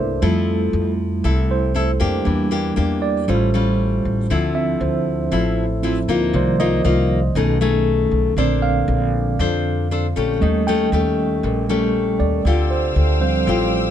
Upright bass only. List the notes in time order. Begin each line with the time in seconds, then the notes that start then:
Already playing: C2
0.22 F2
0.73 F2
1.24 C2
2.01 F2
2.26 E2
2.77 E2
3.28 A1
4.05 A1
4.30 D2
4.81 D2
5.32 A1
6.08 D2
6.33 C2
6.85 C2
7.35 B1
8.11 B1
8.37 A#1
8.88 A#1
9.39 F2
10.16 A#1
10.42 D#2
10.92 D#2
11.43 A#1
12.20 D#2
12.45 D2
12.96 D2
13.47 A1